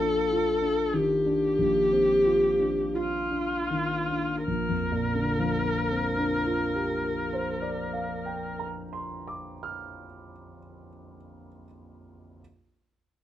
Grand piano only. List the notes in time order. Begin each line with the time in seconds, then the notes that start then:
Already playing: A#1 F4
0.00 D4
0.32 F4
0.62 D4
0.93 D#3
1.26 D4
1.58 A#1
1.92 C4
2.26 F4
2.60 D4
2.94 F4
3.31 D4
3.70 D#3
4.09 D4
4.47 A#1
4.69 F2
4.92 A#2
5.15 D3
5.39 F3
5.64 A#3
5.91 C4
6.18 D4
6.45 F4
6.74 G4
7.03 A#4
7.33 C5
7.62 D5
7.93 F5
8.26 G5
8.59 A#5
8.93 C6
9.27 D6
9.63 F6